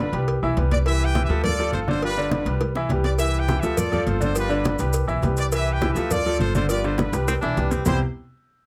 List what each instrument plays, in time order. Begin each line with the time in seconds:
0.00 trumpet section D4 F4 B4
0.13 upright bass C2, grand piano G3 G4 B4, cowbell, high conga
0.28 cowbell, high conga
0.42 upright bass B1, grand piano E3 E4 E5, high conga
0.57 upright bass C2, grand piano G3 G4 B4, cowbell, high conga
0.71 trumpet section D5, cowbell, high conga
0.86 grand piano E3 E4 E5, trumpet section G4 B4 E5, cowbell, high conga
1.01 high conga
1.05 trumpet section G5
1.15 grand piano E3 E4 E5, cowbell, high conga
1.25 trumpet section E5
1.29 upright bass D2, grand piano F3 F4 A4, high conga
1.44 trumpet section F4 A4 D5, cowbell, high conga, low conga
1.59 grand piano F3 F4 A4, high conga
1.72 upright bass G1, trumpet section C5, cowbell, high conga
1.88 grand piano D3 D4 D5, trumpet section C5, high conga
2.02 grand piano F3 F4 G4, trumpet section D4 F4 B4, cowbell, high conga
2.17 grand piano D3 D4 D5, high conga
2.31 trumpet section D4 F4 B4, cowbell, high conga
2.45 upright bass C2, grand piano G3 G4 B4, cowbell, high conga
2.61 cowbell, high bongo, high conga
2.75 grand piano E3 E4 E5, low bongo, high conga
2.89 upright bass C2, grand piano G3 G4 B4, cowbell, high conga
3.04 trumpet section D5, cowbell, low bongo
3.19 grand piano E3 E4 E5, trumpet section G4 B4 E5, cowbell, high conga, maracas
3.34 high conga, maracas
3.39 trumpet section G5
3.48 grand piano E3 E4 E5, cowbell, high conga, maracas
3.59 upright bass D2, trumpet section E5
3.63 grand piano F3 F4 A4, high conga, maracas
3.77 trumpet section F4 A4 D5, cowbell, high conga, low conga, maracas
3.92 grand piano F3 F4 A4, high conga, low conga, maracas
4.06 upright bass G1, trumpet section C5, cowbell, high conga, maracas
4.21 grand piano D3 D4 D5, trumpet section C5, high conga, maracas
4.35 grand piano F3 F4 G4, trumpet section D4 F4 B4, cowbell, maracas
4.50 grand piano D3 D4 D5, maracas
4.64 trumpet section D4 F4 B4, cowbell, high conga, maracas
4.79 upright bass C2, grand piano G3 G4 B4, cowbell, high conga, maracas
4.93 cowbell, high conga, maracas
5.07 upright bass B1, grand piano E3 E4 E5, high conga, maracas
5.22 upright bass C2, grand piano G3 G4 B4, cowbell, high conga, maracas
5.37 trumpet section D5, cowbell, maracas
5.52 grand piano E3 E4 E5, trumpet section G4 B4 E5, cowbell, high conga, maracas
5.67 high conga, maracas
5.74 trumpet section G5
5.81 grand piano E3 E4 E5, cowbell, high conga, maracas
5.93 upright bass D2, grand piano F3 F4 A4, trumpet section E5, high conga, maracas
6.11 trumpet section F4 A4 D5, cowbell, high conga, low conga, maracas
6.26 grand piano F3 F4 A4, high conga, maracas
6.39 upright bass G1, trumpet section C5, cowbell, high conga, maracas
6.55 grand piano D3 D4 D5, trumpet section C5, high conga, maracas
6.69 grand piano F3 F4 G4, trumpet section F4 B4 D5, cowbell, maracas
6.84 grand piano D3 D4 D5, trumpet section C5, high conga, maracas
6.98 trumpet section D4 F4 B4, cowbell, high bongo, high conga, maracas
7.12 upright bass C2, grand piano G3 G4 B4, cowbell, high bongo, high conga, maracas
7.28 baritone saxophone C4, cowbell, high bongo, high conga, maracas
7.41 upright bass B1, grand piano E3 E4 E5, baritone saxophone D4, low bongo, maracas
7.57 upright bass C2, grand piano G3 G4 B4, cowbell, high conga, maracas
7.71 baritone saxophone C4, cowbell, low bongo, high conga, maracas
7.85 upright bass C2, grand piano C3 G3 B3 C4 E4 G4, baritone saxophone E4, trumpet section C5, low bongo, low conga, maracas